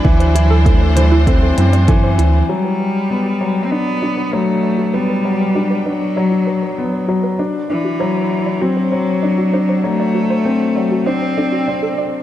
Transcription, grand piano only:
X:1
M:4/4
L:1/8
Q:1/4=98
K:G
V:1 name="Grand piano"
E, z A, E, C C E, z | F, z B, F, D D F, z | B, F, D D F, z B, F, | D D F, z C F, D D |
F, z C F, D D C z |]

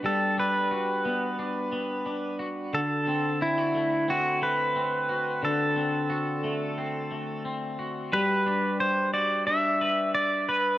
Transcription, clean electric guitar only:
X:1
M:4/4
L:1/16
Q:1/4=89
K:G
V:1 name="Clean electric guitar"
[G,B,DF]2 D2 F2 B,2 D2 B,2 D2 F2 | D,2 C2 E F A,2 C2 A,2 C2 F2 | D,2 C2 F2 A,2 C2 A,2 C2 F2 | [G,B]2 D4 F2 D2 B4 B2 |]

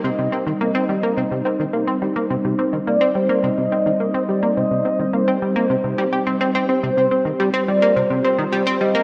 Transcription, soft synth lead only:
X:1
M:4/4
L:1/8
Q:1/4=106
K:Cdor
V:1 name="Soft synth lead"
e2 z6 | z2 d c e3 d | e2 c4 z2 | c2 z d c3 e |]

